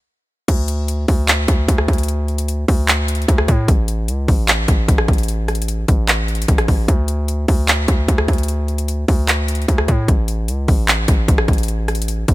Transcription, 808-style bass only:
0, 0, Header, 1, 2, 480
1, 0, Start_track
1, 0, Tempo, 400000
1, 580, Time_signature, 4, 2, 24, 8
1, 14812, End_track
2, 0, Start_track
2, 0, Title_t, "808-style bass"
2, 0, Program_c, 0, 38
2, 580, Note_on_c, 0, 38, 111
2, 1271, Note_off_c, 0, 38, 0
2, 1301, Note_on_c, 0, 38, 109
2, 1761, Note_off_c, 0, 38, 0
2, 1780, Note_on_c, 0, 38, 107
2, 2011, Note_off_c, 0, 38, 0
2, 2021, Note_on_c, 0, 38, 116
2, 2251, Note_off_c, 0, 38, 0
2, 2260, Note_on_c, 0, 38, 106
2, 3182, Note_off_c, 0, 38, 0
2, 3221, Note_on_c, 0, 38, 106
2, 3912, Note_off_c, 0, 38, 0
2, 3941, Note_on_c, 0, 38, 111
2, 4171, Note_off_c, 0, 38, 0
2, 4180, Note_on_c, 0, 45, 104
2, 4410, Note_off_c, 0, 45, 0
2, 4420, Note_on_c, 0, 33, 105
2, 4900, Note_on_c, 0, 37, 106
2, 4918, Note_off_c, 0, 33, 0
2, 5128, Note_off_c, 0, 37, 0
2, 5141, Note_on_c, 0, 33, 107
2, 5601, Note_off_c, 0, 33, 0
2, 5620, Note_on_c, 0, 33, 107
2, 5850, Note_off_c, 0, 33, 0
2, 5861, Note_on_c, 0, 33, 114
2, 6091, Note_off_c, 0, 33, 0
2, 6100, Note_on_c, 0, 33, 101
2, 7022, Note_off_c, 0, 33, 0
2, 7061, Note_on_c, 0, 33, 108
2, 7752, Note_off_c, 0, 33, 0
2, 7781, Note_on_c, 0, 33, 111
2, 8011, Note_off_c, 0, 33, 0
2, 8020, Note_on_c, 0, 33, 106
2, 8251, Note_off_c, 0, 33, 0
2, 8260, Note_on_c, 0, 38, 113
2, 8951, Note_off_c, 0, 38, 0
2, 8981, Note_on_c, 0, 38, 108
2, 9441, Note_off_c, 0, 38, 0
2, 9460, Note_on_c, 0, 38, 105
2, 9690, Note_off_c, 0, 38, 0
2, 9701, Note_on_c, 0, 38, 112
2, 9931, Note_off_c, 0, 38, 0
2, 9940, Note_on_c, 0, 38, 102
2, 10862, Note_off_c, 0, 38, 0
2, 10901, Note_on_c, 0, 38, 108
2, 11592, Note_off_c, 0, 38, 0
2, 11621, Note_on_c, 0, 38, 116
2, 11851, Note_off_c, 0, 38, 0
2, 11860, Note_on_c, 0, 45, 105
2, 12090, Note_off_c, 0, 45, 0
2, 12100, Note_on_c, 0, 33, 107
2, 12580, Note_on_c, 0, 37, 106
2, 12598, Note_off_c, 0, 33, 0
2, 12808, Note_off_c, 0, 37, 0
2, 12821, Note_on_c, 0, 33, 109
2, 13281, Note_off_c, 0, 33, 0
2, 13299, Note_on_c, 0, 33, 104
2, 13530, Note_off_c, 0, 33, 0
2, 13540, Note_on_c, 0, 33, 113
2, 13770, Note_off_c, 0, 33, 0
2, 13779, Note_on_c, 0, 33, 102
2, 14701, Note_off_c, 0, 33, 0
2, 14740, Note_on_c, 0, 33, 106
2, 14812, Note_off_c, 0, 33, 0
2, 14812, End_track
0, 0, End_of_file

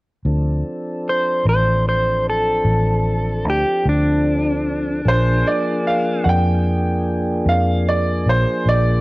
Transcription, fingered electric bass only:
0, 0, Header, 1, 2, 480
1, 0, Start_track
1, 0, Key_signature, -1, "minor"
1, 0, Tempo, 801068
1, 148, Time_signature, 12, 3, 24, 8
1, 5398, End_track
2, 0, Start_track
2, 0, Title_t, "Fingered electric bass"
2, 0, Program_c, 0, 33
2, 149, Note_on_c, 0, 38, 69
2, 369, Note_off_c, 0, 38, 0
2, 870, Note_on_c, 0, 33, 73
2, 1566, Note_off_c, 0, 33, 0
2, 1586, Note_on_c, 0, 33, 81
2, 2067, Note_off_c, 0, 33, 0
2, 2067, Note_on_c, 0, 38, 68
2, 2178, Note_off_c, 0, 38, 0
2, 2310, Note_on_c, 0, 38, 70
2, 3006, Note_off_c, 0, 38, 0
2, 3029, Note_on_c, 0, 34, 74
2, 3250, Note_off_c, 0, 34, 0
2, 3749, Note_on_c, 0, 41, 75
2, 4445, Note_off_c, 0, 41, 0
2, 4467, Note_on_c, 0, 41, 83
2, 4949, Note_on_c, 0, 34, 70
2, 4958, Note_off_c, 0, 41, 0
2, 5059, Note_off_c, 0, 34, 0
2, 5188, Note_on_c, 0, 34, 71
2, 5398, Note_off_c, 0, 34, 0
2, 5398, End_track
0, 0, End_of_file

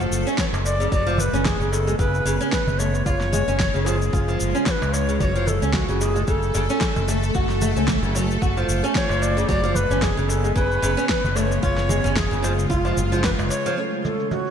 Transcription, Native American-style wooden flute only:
0, 0, Header, 1, 2, 480
1, 0, Start_track
1, 0, Key_signature, 3, "minor"
1, 0, Tempo, 535714
1, 823, Time_signature, 4, 2, 24, 8
1, 12996, End_track
2, 0, Start_track
2, 0, Title_t, "Native American-style wooden flute"
2, 0, Program_c, 0, 77
2, 348, Note_on_c, 0, 73, 97
2, 402, Note_off_c, 0, 73, 0
2, 585, Note_on_c, 0, 74, 104
2, 807, Note_off_c, 0, 74, 0
2, 820, Note_on_c, 0, 74, 109
2, 1069, Note_on_c, 0, 71, 102
2, 1082, Note_off_c, 0, 74, 0
2, 1303, Note_on_c, 0, 68, 90
2, 1316, Note_off_c, 0, 71, 0
2, 1534, Note_on_c, 0, 69, 93
2, 1547, Note_off_c, 0, 68, 0
2, 1775, Note_off_c, 0, 69, 0
2, 1780, Note_on_c, 0, 71, 103
2, 2228, Note_off_c, 0, 71, 0
2, 2259, Note_on_c, 0, 71, 93
2, 2497, Note_on_c, 0, 73, 85
2, 2510, Note_off_c, 0, 71, 0
2, 2732, Note_off_c, 0, 73, 0
2, 2737, Note_on_c, 0, 74, 100
2, 2774, Note_on_c, 0, 73, 109
2, 2783, Note_off_c, 0, 74, 0
2, 3450, Note_on_c, 0, 68, 85
2, 3464, Note_off_c, 0, 73, 0
2, 3935, Note_off_c, 0, 68, 0
2, 4181, Note_on_c, 0, 73, 96
2, 4221, Note_on_c, 0, 71, 104
2, 4230, Note_off_c, 0, 73, 0
2, 4414, Note_on_c, 0, 73, 98
2, 4428, Note_off_c, 0, 71, 0
2, 4659, Note_off_c, 0, 73, 0
2, 4667, Note_on_c, 0, 74, 95
2, 4704, Note_on_c, 0, 73, 103
2, 4713, Note_off_c, 0, 74, 0
2, 4901, Note_on_c, 0, 69, 96
2, 4914, Note_off_c, 0, 73, 0
2, 5141, Note_on_c, 0, 66, 84
2, 5155, Note_off_c, 0, 69, 0
2, 5395, Note_on_c, 0, 68, 88
2, 5408, Note_off_c, 0, 66, 0
2, 5624, Note_off_c, 0, 68, 0
2, 5629, Note_on_c, 0, 69, 88
2, 6310, Note_off_c, 0, 69, 0
2, 8027, Note_on_c, 0, 73, 105
2, 8265, Note_on_c, 0, 74, 104
2, 8278, Note_off_c, 0, 73, 0
2, 8499, Note_off_c, 0, 74, 0
2, 8504, Note_on_c, 0, 74, 118
2, 8738, Note_on_c, 0, 71, 102
2, 8752, Note_off_c, 0, 74, 0
2, 8983, Note_on_c, 0, 68, 91
2, 8996, Note_off_c, 0, 71, 0
2, 9215, Note_on_c, 0, 69, 95
2, 9228, Note_off_c, 0, 68, 0
2, 9453, Note_off_c, 0, 69, 0
2, 9458, Note_on_c, 0, 71, 107
2, 9907, Note_off_c, 0, 71, 0
2, 9943, Note_on_c, 0, 71, 100
2, 10176, Note_on_c, 0, 74, 85
2, 10190, Note_off_c, 0, 71, 0
2, 10210, Note_on_c, 0, 73, 93
2, 10219, Note_off_c, 0, 74, 0
2, 10410, Note_off_c, 0, 73, 0
2, 10416, Note_on_c, 0, 73, 102
2, 10898, Note_on_c, 0, 68, 91
2, 10912, Note_off_c, 0, 73, 0
2, 11371, Note_off_c, 0, 68, 0
2, 11376, Note_on_c, 0, 65, 77
2, 11826, Note_off_c, 0, 65, 0
2, 11859, Note_on_c, 0, 71, 101
2, 11914, Note_off_c, 0, 71, 0
2, 12092, Note_on_c, 0, 73, 100
2, 12320, Note_off_c, 0, 73, 0
2, 12339, Note_on_c, 0, 73, 92
2, 12394, Note_off_c, 0, 73, 0
2, 12575, Note_on_c, 0, 69, 82
2, 12802, Note_off_c, 0, 69, 0
2, 12820, Note_on_c, 0, 66, 73
2, 12996, Note_off_c, 0, 66, 0
2, 12996, End_track
0, 0, End_of_file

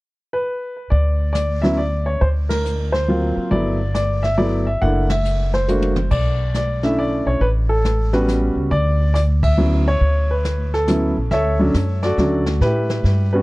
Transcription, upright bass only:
0, 0, Header, 1, 3, 480
1, 0, Start_track
1, 0, Key_signature, 2, "major"
1, 0, Tempo, 433213
1, 1019, Time_signature, 3, 2, 24, 8
1, 14873, End_track
2, 0, Start_track
2, 0, Title_t, "Upright bass"
2, 0, Program_c, 0, 32
2, 1017, Note_on_c, 0, 38, 80
2, 2412, Note_off_c, 0, 38, 0
2, 2451, Note_on_c, 0, 38, 77
2, 3684, Note_off_c, 0, 38, 0
2, 3893, Note_on_c, 0, 31, 82
2, 5290, Note_off_c, 0, 31, 0
2, 5337, Note_on_c, 0, 30, 78
2, 6732, Note_off_c, 0, 30, 0
2, 6772, Note_on_c, 0, 35, 80
2, 8004, Note_off_c, 0, 35, 0
2, 8046, Note_on_c, 0, 35, 65
2, 8199, Note_off_c, 0, 35, 0
2, 8206, Note_on_c, 0, 33, 78
2, 9441, Note_off_c, 0, 33, 0
2, 9476, Note_on_c, 0, 37, 60
2, 9637, Note_off_c, 0, 37, 0
2, 9653, Note_on_c, 0, 38, 85
2, 11050, Note_off_c, 0, 38, 0
2, 11090, Note_on_c, 0, 38, 83
2, 12323, Note_off_c, 0, 38, 0
2, 12367, Note_on_c, 0, 34, 61
2, 12523, Note_off_c, 0, 34, 0
2, 12530, Note_on_c, 0, 38, 80
2, 12998, Note_off_c, 0, 38, 0
2, 13014, Note_on_c, 0, 42, 87
2, 13481, Note_off_c, 0, 42, 0
2, 13489, Note_on_c, 0, 38, 84
2, 13958, Note_off_c, 0, 38, 0
2, 13971, Note_on_c, 0, 45, 80
2, 14439, Note_off_c, 0, 45, 0
2, 14450, Note_on_c, 0, 43, 91
2, 14873, Note_off_c, 0, 43, 0
2, 14873, End_track
3, 0, Start_track
3, 0, Title_t, "Muted upright bass strokes"
3, 3731, Note_on_c, 9, 29, 35
3, 3842, Note_off_c, 9, 29, 0
3, 14873, End_track
0, 0, End_of_file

